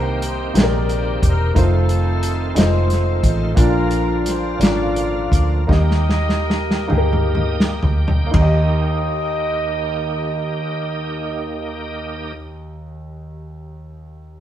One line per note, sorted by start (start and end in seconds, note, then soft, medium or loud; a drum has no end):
0.00 0.51 C2 medium
0.00 0.51 C3 medium
0.00 1.51 D#3 medium
0.00 0.17 A#3 medium
0.00 1.51 A#3 soft
0.00 1.52 C4 soft
0.00 0.21 D#4 medium
0.00 0.52 D#4 medium
0.00 0.18 G4 medium
0.00 0.52 G4 medium
0.00 1.52 G4 medium
0.00 0.20 A#4 medium
0.00 0.19 C5 medium
0.22 closed hi-hat medium
0.26 0.58 C5 medium
0.54 1.18 A#1 medium
0.54 1.17 A#3 medium
0.54 1.17 D#4 soft
0.54 1.18 G4 medium
0.54 0.63 G#4 soft
0.54 1.24 A#4 medium
0.54 snare medium
0.54 closed hi-hat medium
0.58 1.53 G4 medium
0.58 1.24 D5 medium
0.63 1.22 A#4 medium
0.89 closed hi-hat soft
1.22 1.53 E1 medium
1.22 1.55 A#4 medium
1.22 kick medium
1.22 closed hi-hat medium
1.54 2.52 F1 medium
1.54 3.52 D#3 medium
1.54 2.17 A3 medium
1.54 3.52 A3 soft
1.54 3.52 C4 soft
1.54 2.18 D#4 medium
1.54 3.52 F4 medium
1.54 2.19 F4 medium
1.54 2.19 C5 medium
1.54 kick medium
1.54 closed hi-hat medium
1.58 2.53 C4 medium
1.58 2.53 D#4 medium
1.58 2.54 A4 medium
1.89 closed hi-hat soft
2.23 closed hi-hat medium
2.54 3.19 F1 medium
2.54 2.62 G#3 soft
2.54 3.18 D#4 soft
2.54 3.53 D#4 medium
2.54 3.19 F4 medium
2.54 3.53 A4 medium
2.54 3.32 C5 medium
2.54 3.20 D#5 medium
2.54 closed hi-hat medium
2.58 3.21 A3 medium
2.58 snare medium
2.90 snare soft
2.90 closed hi-hat soft
3.23 3.54 A1 medium
3.23 kick medium
3.23 closed hi-hat medium
3.54 4.55 A#1 medium
3.54 4.55 A#2 medium
3.54 5.64 D3 medium
3.54 5.64 F3 soft
3.54 4.19 A#3 medium
3.54 5.64 A#3 medium
3.54 4.20 D4 medium
3.54 4.55 D4 medium
3.54 5.64 F4 medium
3.54 4.55 F4 medium
3.54 4.20 F4 medium
3.54 4.21 A#4 medium
3.54 4.21 D5 medium
3.54 kick medium
3.54 closed hi-hat medium
3.91 closed hi-hat soft
4.25 4.57 C5 medium
4.25 snare soft
4.25 closed hi-hat medium
4.57 5.27 G#1 medium
4.57 5.25 A#3 medium
4.57 4.65 C#4 soft
4.57 5.64 F4 medium
4.57 5.26 F4 medium
4.57 5.64 A#4 medium
4.57 5.29 D5 medium
4.57 5.27 F5 medium
4.57 closed hi-hat medium
4.63 5.29 D4 soft
4.63 snare medium
4.96 closed hi-hat soft
5.31 5.66 D2 medium
5.31 5.47 D5 medium
5.31 kick medium
5.31 closed hi-hat medium
5.67 6.87 D#2 medium
5.67 6.87 D#3 soft
5.67 6.42 A#3 medium
5.67 8.30 A#3 soft
5.67 6.43 D#4 medium
5.67 8.31 D#4 medium
5.67 7.79 G4 medium
5.67 6.43 G4 medium
5.67 8.31 G4 medium
5.67 7.79 A#4 medium
5.67 7.79 D#5 medium
5.67 kick medium
5.71 6.44 D#5 medium
5.71 snare soft
5.91 snare soft
6.09 snare medium
6.29 snare medium
6.50 snare medium
6.71 snare medium
6.88 7.80 D2 medium
6.88 7.75 A#3 medium
6.88 7.76 D#4 medium
6.88 7.77 G4 medium
6.88 6.99 G#4 medium
6.88 mid tom medium
6.98 7.80 A#4 medium
7.13 mid tom medium
7.35 7.79 D#5 medium
7.35 mid tom medium
7.60 snare medium
7.82 8.30 D2 medium
7.82 8.30 G5 medium
7.82 floor tom medium
8.08 floor tom medium
8.26 12.24 A#3 medium
8.31 12.32 D#2 medium
8.31 12.33 D#3 medium
8.31 12.33 A#3 medium
8.31 12.29 D#4 medium
8.31 12.32 D#4 medium
8.31 12.33 G4 medium
8.31 12.31 D#5 medium
8.31 kick medium
8.31 floor tom medium
8.31 ride bell medium
8.36 12.34 G4 medium
8.42 12.39 D#5 medium